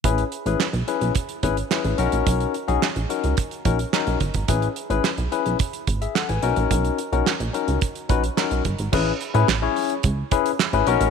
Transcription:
<<
  \new Staff \with { instrumentName = "Tine electric piano" } { \time 4/4 \key a \major \tempo 4 = 108 << { r1 | r1 | r2 r8. <gis' e''>16 <a' fis''>16 <b' gis''>8 r16 | r1 |
r1 | } \\ { <cis' e' gis' b'>16 r8 <cis' e' gis' b'>16 r8 <cis' e' gis' b'>8 r8 <cis' e' gis' b'>16 r16 <cis' e' gis' b'>8 <cis' dis' fis' ais'>8~ | <cis' dis' fis' ais'>8 r16 <cis' dis' fis' gis'>16 r8 <cis' dis' fis' ais'>8 r8 <cis' dis' fis' ais'>16 r16 <cis' dis' fis' ais'>8 r8 | <cis' e' gis' b'>16 r8 <cis' e' gis' b'>16 r8 <cis' e' gis' b'>8 r4. <cis' dis' fis' ais'>8~ | <cis' dis' fis' ais'>8 r16 <cis' dis' fis' ais'>16 r8 <cis' dis' fis' ais'>8 r8 <cis' dis' fis' b'>16 r16 <cis' dis' fis' ais'>8 r8 |
<cis' e' gis' b'>16 r8 <cis' e' gis' b'>16 r16 <cis' e' gis' cis''>8 r8. <cis' e' gis' b'>16 r8 <cis' e' gis' b'>16 <cis' dis' fis' ais'>8 | } >> }
  \new Staff \with { instrumentName = "Analog synth bass" } { \clef bass \time 4/4 \key a \major a,,8 r16 a,,16 r16 b,,16 r16 b,,16 r8 gis,,8 r16 a,,16 b,,16 ais,,16 | b,,8 r16 b,,16 r16 ais,,16 r16 cis,16 r8 ais,,8 r16 b,,16 g,,16 gis,,16 | a,,8 r16 a,,16 r16 b,,16 r16 b,,16 r8 gis,,8 r16 a,,16 b,,16 ais,,16 | b,,8 r16 b,,16 r16 ais,,16 r16 cis,16 r8 ais,,8 r16 b,,16 g,,16 gis,,16 |
a,,8 r16 a,16 a,,8 r8 cis,8 r8. a,,16 b,,16 ais,,16 | }
  \new DrumStaff \with { instrumentName = "Drums" } \drummode { \time 4/4 <hh bd>16 hh16 hh16 hh16 <hc sn>16 hh16 hh16 hh16 <hh bd>16 hh16 <hh bd>16 hh16 <hc sn>16 hh16 hh16 hh16 | <hh bd>16 hh16 hh16 hh16 <hc sn>16 hh16 hh16 hh16 <hh bd>16 hh16 <hh bd>16 hh16 <hc sn>16 hh16 <hh bd>16 <hh bd>16 | <hh bd>16 hh16 hh16 hh16 <hc sn>16 hh16 hh16 hh16 <hh bd>16 hh16 <hh bd>16 hh16 <hc sn>16 hh16 hh16 hh16 | <hh bd>16 hh16 hh16 hh16 <hc sn>16 hh16 hh16 hh16 <hh bd>16 hh16 <hh bd>16 hh16 <hc sn>16 hh16 <hh bd>16 hh16 |
<cymc bd>8 hh16 hh16 <hc sn>8 hho16 hh16 <hh bd>8 <hh bd>16 hh16 <hc sn>16 hh16 hh16 hh16 | }
>>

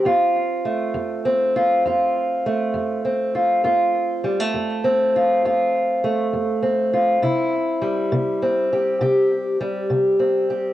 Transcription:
\new Staff \with { instrumentName = "Steel-string acoustic guitar" } { \time 12/8 \key f \lydian \tempo 4. = 67 << { f'4 a4 c'8 f'8 f'4 a4 c'8 f'8 | f'4 g16 a8. c'8 f'8 f'4 a4 c'8 f'8 | e'4 g4 c'8 g'8 g'4 g4 c'8 g'8 | } \\ { f,4 r8 f,4 r8 f,4 r8 f,4 r8 | f,4 r8 f,4 r8 f,4 r8 f,4 r8 | c4 r8 c4 r8 c4 r8 c4 r8 | } >> }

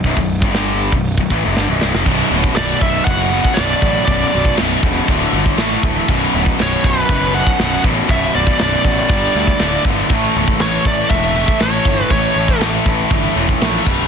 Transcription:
<<
  \new Staff \with { instrumentName = "Lead electric guitar" } { \time 4/4 \key b \minor \tempo 4 = 120 r1 | r4 d''8 e''8 fis''4 d''4 | d''4 r2. | r4 cis''8 b'4 fis''4 r8 |
e''8 d''8 d''2~ d''8 r8 | r4 cis''8 d''8 e''4 cis''4 | cis''4 r2. | }
  \new Staff \with { instrumentName = "Distorted electric guitar" } { \clef bass \time 4/4 \key b \minor <b,, fis,>16 <b,, fis,>8 <g, d g>4 <b,, fis,>8 <b,, fis,>16 <a, e>16 <eis, c>16 <g, d>16 <b,, fis,>16 <c, g,>16 <eis, c>16 | <b,, fis, b,>8 <b,, fis, b,>8 <b,, fis, b,>8 <b,, fis, b,>8 <b,, fis, b,>8 <b,, fis, b,>8 <b,, fis, b,>8 <b,, fis, b,>8 | <b,, fis, b,>8 <b,, fis, b,>8 <b,, fis, b,>8 <b,, fis, b,>8 <d, a, d>8 <d, a, d>8 <a, e a>8 <a, e a>8 | <b,, fis, b,>8 <b,, fis, b,>8 <b,, fis, b,>8 <b,, fis, b,>8 <b,, fis, b,>8 <b,, fis, b,>8 <b,, fis, b,>8 <b,, fis, b,>8 |
<b,, fis, b,>8 <b,, fis, b,>8 <b,, fis, b,>8 <b,, fis, b,>8 <g, d g>8 <g, d g>8 <d, a, d>8 <d, a, d>8 | <a, e a>8 <a, e a>8 <a, e a>8 <a, e a>8 <a, e a>8 <a, e a>8 <a, e a>8 <a, e a>8 | <a, e a>8 <a, e a>8 <a, e a>8 <a, e a>8 <a, e a>8 <a, e a>8 <a, e a>8 <g, d g>8 | }
  \new Staff \with { instrumentName = "Distorted electric guitar" } { \clef bass \time 4/4 \key b \minor <b,, fis,>16 <b,, fis,>8 <g, d g>4 <b,, fis,>8 <b,, fis,>16 <a, e>16 <eis, c>16 <g, d>16 <b,, fis,>16 <c, g,>16 <eis, c>16 | <b,, fis, b,>8 <b,, fis, b,>8 <b,, fis, b,>8 <b,, fis, b,>8 <b,, fis, b,>8 <b,, fis, b,>8 <b,, fis, b,>8 <b,, fis, b,>8 | <b,, fis, b,>8 <b,, fis, b,>8 <b,, fis, b,>8 <b,, fis, b,>8 <d, a, d>8 <d, a, d>8 <a, e a>8 <a, e a>8 | <b,, fis, b,>8 <b,, fis, b,>8 <b,, fis, b,>8 <b,, fis, b,>8 <b,, fis, b,>8 <b,, fis, b,>8 <b,, fis, b,>8 <b,, fis, b,>8 |
<b,, fis, b,>8 <b,, fis, b,>8 <b,, fis, b,>8 <b,, fis, b,>8 <g, d g>8 <g, d g>8 <d, a, d>8 <d, a, d>8 | <a, e a>8 <a, e a>8 <a, e a>8 <a, e a>8 <a, e a>8 <a, e a>8 <a, e a>8 <a, e a>8 | <a, e a>8 <a, e a>8 <a, e a>8 <a, e a>8 <a, e a>8 <a, e a>8 <a, e a>8 <g, d g>8 | }
  \new Staff \with { instrumentName = "Overdriven electric guitar" } { \clef bass \time 4/4 \key b \minor r1 | <b,, fis, b,>2~ <b,, fis, b,>8 <b,, fis, b,>8 <b,, fis, b,>4 | <b,, fis, b,>2 <d, a, d>4 <a, e a>4 | <b,, fis, b,>2~ <b,, fis, b,>8 <b,, fis, b,>8 <b,, fis, b,>4 |
<b,, fis, b,>2 <g, d g>4 <d, a, d>4 | <a, e a>2~ <a, e a>8 <a, e a>8 <a, e a>4 | <a, e a>2~ <a, e a>8 <a, e a>8 <a, e a>8 <g, d g>8 | }
  \new Staff \with { instrumentName = "Picked electric bass" } { \clef bass \time 4/4 \key b \minor b,,,16 b,,,8 g,,4 b,,,8 b,,,16 a,,16 eis,,16 g,,16 b,,,16 c,,16 eis,,16 | b,,,8 d,,8 b,,,8 b,,,8 fis,,4 b,,,8 a,,8 | b,,,8 b,,,8 b,,,8 e,,8 d,,8 g,,8 a,,8 d,,8 | b,,,8 d,,8 b,,,8 b,,,8 fis,,4 b,,,8 a,,8 |
b,,,8 b,,,8 b,,,8 a,,8 g,,8 d,8 d,,8 g,,8 | a,,8 cis,,8 a,,8 a,,8 e,,4 a,,8 g,,8 | a,,8 a,,8 a,,8 a,,8 g,,8 e,,8 ais,,8 b,,,8 | }
  \new DrumStaff \with { instrumentName = "Drums" } \drummode { \time 4/4 <hho bd>16 bd8 bd16 <hho sn>8. bd16 hho16 bd16 bd8 sn8 sn16 sn16 | <cymc bd>8. bd16 <cymc sn>8 bd8 <cymc bd>8. bd16 <cymc sn>8 bd8 | <cymc bd>8. bd16 <cymc sn>8 bd8 <cymc bd>8. bd16 <cymc sn>8 bd8 | <cymc bd>8. bd16 <cymc sn>8 bd8 <cymc bd>8. bd16 <cymc sn>8 bd8 |
<cymc bd>8. bd16 <cymc sn>8 bd8 <cymc bd>8. bd16 <cymc sn>8 bd8 | <cymc bd>8. bd16 <cymc sn>8 bd8 <cymc bd>8. bd16 <cymc sn>8 bd8 | <cymc bd>8. bd16 <cymc sn>8 bd8 <cymc bd>8. bd16 <cymc sn>8 <cymc bd>8 | }
>>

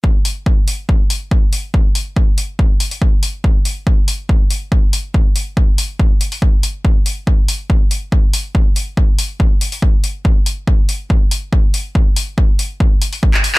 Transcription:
\new DrumStaff \with { instrumentName = "Drums" } \drummode { \time 4/4 \tempo 4 = 141 bd8 hho8 bd8 hho8 bd8 hho8 bd8 hho8 | bd8 hho8 bd8 hho8 bd8 hho16 hho16 bd8 hho8 | bd8 hho8 bd8 hho8 bd8 hho8 bd8 hho8 | bd8 hho8 bd8 hho8 bd8 hho16 hho16 bd8 hho8 |
bd8 hho8 bd8 hho8 bd8 hho8 bd8 hho8 | bd8 hho8 bd8 hho8 bd8 hho16 hho16 bd8 hho8 | bd8 hho8 bd8 hho8 bd8 hho8 bd8 hho8 | bd8 hho8 bd8 hho8 bd8 hho16 hho16 bd16 hc16 hho16 hc16 | }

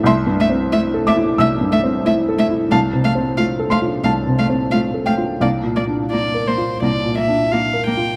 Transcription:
<<
  \new Staff \with { instrumentName = "Violin" } { \time 4/4 \key c \mixolydian \tempo 4 = 89 e''8 e''8 e''8 e''8 e''8 e''8 e''8 e''8 | f''8 f''8 f''8 f''8 f''8 f''8 f''8 f''8 | d''8 d''8 d''8 c''8 d''8 e''8 f''8 g''8 | }
  \new Staff \with { instrumentName = "Felt piano" } { \time 4/4 \key c \mixolydian << { c'''4. d'''8 e'''2 | a''4. c'''8 a''4. g''8 | f''2. r4 | } \\ { \tuplet 3/2 { <c, e'>8 g,8 c'8 e'8 a'8 e'8 c,8 g,8 c'8 e'8 a'8 e'8 } | \tuplet 3/2 { c,8 c8 c'8 f'8 a'8 f'8 c,8 c8 c'8 f'8 a'8 f'8 } | \tuplet 3/2 { c,8 bes,8 d'8 f'8 bes'8 f'8 c,8 bes,8 d'8 f'8 bes'8 f'8 } | } >> }
  \new Staff \with { instrumentName = "Cello" } { \time 4/4 \key c \mixolydian a8 a8 a8 a8 a8 a8 a8 a8 | a8 a8 a8 a8 a8 a8 a8 a8 | bes8 bes8 bes8 bes8 bes8 bes8 bes8 bes8 | }
>>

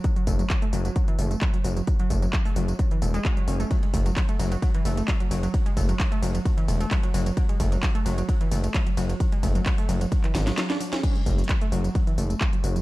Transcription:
<<
  \new Staff \with { instrumentName = "Synth arpeggio sound" } { \clef bass \time 4/4 \key fis \minor \tempo 4 = 131 fis16 fis16 a16 fis16 fis16 a16 fis16 fis16 fis16 e16 a16 a16 fis16 fis16 fis16 fis16 | fis16 fis16 a16 fis16 fis16 a16 fis16 fis16 fis16 e16 a16 gis16 fis'16 fis16 cis'16 a16 | fis16 gis16 a16 fis16 fis16 a16 fis16 fis16 fis16 e16 a16 a16 fis16 fis16 fis16 fis16 | fis16 gis16 a16 fis16 fis16 a16 fis16 fis16 fis16 e16 a16 a16 fis16 fis16 fis16 fis16 |
fis16 gis16 a16 fis16 fis16 a16 fis16 fis16 fis16 e16 a16 a16 fis16 fis16 fis16 fis16 | fis16 gis16 a16 fis16 fis16 a16 fis16 fis16 fis16 e16 fis16 fis16 fis16 d'16 fis16 cis'16 | fis16 gis16 a16 fis16 fis16 a16 fis16 fis16 fis16 e16 a16 a16 fis16 fis16 fis16 fis16 | }
  \new Staff \with { instrumentName = "Analog synth bass" } { \clef bass \time 4/4 \key fis \minor r8 fis,,8 r8 fis,,8 r8 fis,,8 r8 fis,,8 | r8 fis,,8 r8 fis,,8 r8 e,,8 r8 fis,,8 | r8 fis,,8 r8 fis,,8 r8 fis,,8 r8 fis,,8 | r8 fis,,8 r8 fis,,8 r8 e,,8 r8 fis,,8 |
r8 fis,,8 r8 fis,,8 r8 fis,,8 r8 fis,,8 | r8 fis,,8 r8 fis,,8 r8 gis,,8 r4 | r8 fis,,8 r8 fis,,8 r8 fis,,8 r8 fis,,8 | }
  \new DrumStaff \with { instrumentName = "Drums" } \drummode { \time 4/4 <hh bd tamb>16 hh16 <hho bd tamb>16 <hh tamb>16 <hc hh bd tamb>16 hh16 <hho tamb>16 <hh tamb>16 <hh bd tamb>16 hh16 <hho tamb>16 <hh tamb>16 <hc hh bd>16 hh16 <hho tamb>16 <hh tamb>16 | <hh bd tamb>16 hh16 <hho bd tamb>16 <hh tamb>16 <hc hh bd tamb>16 hho16 <hho tamb>16 <hh tamb>16 <hh bd tamb>16 hh16 <hho tamb>16 <hh tamb>16 <hc hh bd tamb>16 hh16 <hho tamb>16 <hh tamb>16 | <hh bd cymr tamb>16 <hh cymr>16 <hho bd cymr tamb>16 <hh cymr tamb>16 <hc hh bd cymr tamb>16 <hh cymr>16 <hho cymr tamb>16 <hh cymr tamb>16 <hh bd cymr tamb>16 <hh cymr>16 <hho cymr tamb>16 <hh cymr tamb>16 <hc hh bd cymr tamb>16 <hh cymr>16 <hho cymr tamb>16 <hh cymr tamb>16 | <hh bd cymr tamb>16 <hh cymr>16 <hho bd cymr tamb>16 <hh cymr tamb>16 <hc hh bd cymr tamb>16 <hh cymr>16 <hho cymr tamb>16 <hh cymr tamb>16 <hh bd cymr tamb>16 <hh cymr>16 <hho cymr tamb>16 <hh cymr tamb>16 <hc hh bd cymr tamb>16 <hh cymr>16 <hho cymr tamb>16 <hh cymr tamb>16 |
<hh bd cymr tamb>16 <hh cymr>16 <hho bd cymr tamb>16 <hh cymr tamb>16 <hc hh bd cymr tamb>16 <hh cymr>16 <hho cymr tamb>16 <hh cymr tamb>16 <hh bd cymr tamb>16 <hh cymr>16 <hho cymr tamb>16 <hh cymr tamb>16 <hc hh bd cymr tamb>16 <hh cymr>16 <hho cymr tamb>16 <hh cymr tamb>16 | <hh bd cymr tamb>16 <hh cymr>16 <hho bd cymr tamb>16 <hh cymr tamb>16 <hc hh bd cymr tamb>16 <hho cymr>16 <hho cymr tamb>16 <hh cymr tamb>16 <hh bd cymr tamb>16 <hc hh cymr>16 <hho cymr sn tamb>16 <hh cymr sn tamb>16 <hc hh cymr sn tamb>16 <hh cymr sn>16 <hho cymr tamb>16 <hh cymr sn tamb>16 | <cymc hh bd cymr tamb>16 hh16 <hho bd tamb>16 <hh tamb>32 hh32 <hc hh bd cymr tamb>16 hh16 <hho tamb>16 <hh tamb>16 <hh bd cymr tamb>16 hh16 <hho tamb>16 <hh tamb>16 <hc hh bd cymr tamb>16 hh16 <hho tamb>16 <hh tamb>16 | }
>>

